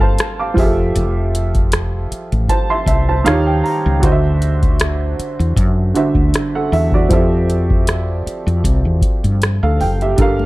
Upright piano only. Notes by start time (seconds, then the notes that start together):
Already playing: G3 G4 A4 F5
0.01 C5 A5
0.39 F5 D6
0.54 F3 F4 G4
0.58 G#4 E5
0.64 A4
2.49 C5 A5
2.70 E5 C6
2.87 E5
3.09 C5 A5
3.24 D#3 D#4 F4 C#5 F5
3.32 G4
3.47 G5
3.64 A#5
4.00 D3 D4 F#4
4.04 C5 D#5
4.12 E5
5.94 D3 D4 F#4 C5 E5
6.55 A4 F#5
6.73 E5
6.94 F#4 D5
7.09 F3 C4 G4
7.13 A4 E5
9.63 A4 F5
9.81 G5
10.02 G4 E5
10.16 G3 D4 A4
10.20 A#4 F5